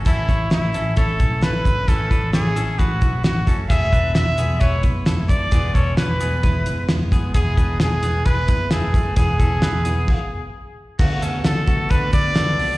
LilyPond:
<<
  \new Staff \with { instrumentName = "Trumpet" } { \time 4/4 \key e \mixolydian \tempo 4 = 132 e'4 e'4 a'4 b'4 | a'4 gis'4 fis'4 fis'8. r16 | e''4 e''4 cis''8 r4 d''8~ | d''8 cis''8 b'2 r4 |
gis'4 gis'4 b'4 gis'4 | gis'2. r4 | r4 a'4 b'8 d''4. | }
  \new Staff \with { instrumentName = "Clean electric guitar" } { \time 4/4 \key e \mixolydian <cis' a'>8 <e' cis''>4 <cis' a'>8 <e' cis''>4 <e' b'>4 | <cis' a'>8 <d' b'>8 <e' cis''>8 <cis' a'>8 <e' b'>4. <cis' a'>8 | <b gis'>8 <d' b'>4 <b gis'>8 <e' b'>4 <e' a'>4 | <b gis'>8 <cis' a'>8 <e' b'>8 <b gis'>8 <e' b'>4. <b gis'>8 |
<b gis'>8 <d' b'>4 <b gis'>8 <e' b'>4 <a e'>4 | <b gis'>8 <cis' a'>8 <e' b'>8 <b gis'>8 r2 | <a fis'>8 <cis' a'>4 <a fis'>8 <d' b'>4 <d' a'>4 | }
  \new Staff \with { instrumentName = "Steel-string acoustic guitar" } { \time 4/4 \key e \mixolydian <a, e a cis' e'>8 <a cis' e'>8 <e a cis' e'>8 <a cis' e'>8 <a, e a cis' e'>8 <a cis' e'>8 <e a cis' e'>8 <a cis' e'>8 | <a, e a cis' e'>8 <a cis' e'>8 <e a cis' e'>8 <a cis' e'>8 <a, e a cis' e'>8 <a cis' e'>8 <e a cis' e'>8 <a cis' e'>8 | <e gis b e'>8 <gis b e'>8 <e gis b e'>8 <gis b e'>8 <e gis b e'>8 <gis b e'>8 <e gis b e'>8 <gis b e'>8 | <e gis b e'>8 <gis b e'>8 <e gis b e'>8 <gis b e'>8 <e gis b e'>8 <gis b e'>8 <e gis b e'>8 <gis b e'>8 |
<e gis b e'>8 <gis b e'>8 <e gis b e'>8 <gis b e'>8 <e gis b e'>8 <gis b e'>8 <e gis b e'>8 <gis b e'>8 | <e gis b e'>8 <gis b e'>8 <e gis b e'>8 <gis b e'>8 r2 | <d a b fis'>8 <a b fis'>8 <d a b fis'>8 <a b fis'>8 <d a b fis'>8 <a b fis'>8 <d a b fis'>8 <a b fis'>8 | }
  \new Staff \with { instrumentName = "Picked electric bass" } { \clef bass \time 4/4 \key e \mixolydian a,,8 a,,8 a,,8 a,,8 a,,8 b,,8 a,,8 gis,,8 | a,,8 a,,8 a,,8 a,,8 a,,8 b,,8 a,,8 fis,,8 | e,,8 e,,8 e,,8 e,,8 e,,8 fis,,8 e,,8 fis,,8 | e,,8 e,,8 e,,8 e,,8 e,,8 fis,,8 e,,8 fis,,8 |
e,,8 e,,8 e,,8 e,,8 e,,8 fis,,8 e,,8 fis,,8 | e,,8 e,,8 e,,8 e,,8 r2 | d,8 d,8 d,8 d,8 d,8 d,8 d,8 cis,8 | }
  \new DrumStaff \with { instrumentName = "Drums" } \drummode { \time 4/4 <hh bd>8 <hh bd>8 <hh sn>8 hh8 <hh bd>8 <hh bd>8 <hh sn>8 <hh bd>8 | <hh bd>8 <hh bd>8 <hh sn>8 hh8 <hh bd>8 <hh bd>8 <hh sn>8 <hh bd>8 | <hh bd>8 <hh bd>8 <hh sn>8 hh8 <hh bd>8 <hh bd>8 <hh sn>8 <hh bd>8 | <hh bd>8 <hh bd>8 <hh sn>8 hh8 <hh bd>8 hh8 <hh sn>8 <hh bd>8 |
<hh bd>8 <hh bd>8 <hh sn>8 hh8 <hh bd>8 <hh bd>8 <hh sn>8 <hh bd>8 | <hh bd>8 <hh bd>8 <hh sn>8 hh8 <cymc bd>4 r4 | <cymc bd>8 hh8 <hh sn>8 <hh bd>8 <hh bd>8 <hh bd>8 <hh sn>8 hho8 | }
>>